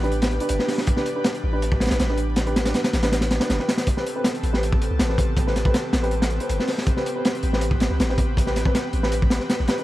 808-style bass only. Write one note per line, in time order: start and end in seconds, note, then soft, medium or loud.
0.00 0.39 A1 loud
0.50 0.59 G1 loud
1.44 1.89 A1 loud
1.91 1.99 A1 medium
2.00 2.73 A1 medium
2.94 3.39 A1 loud
3.50 3.59 G1 medium
4.43 4.89 A1 loud
4.91 4.99 C2 medium
5.00 5.73 A1 medium
5.93 6.39 A1 loud
6.50 6.58 G1 medium
7.43 7.89 A1 loud
7.91 7.99 C2 medium
8.00 8.73 A1 medium
8.93 9.39 A1 loud
9.60 9.68 A1 medium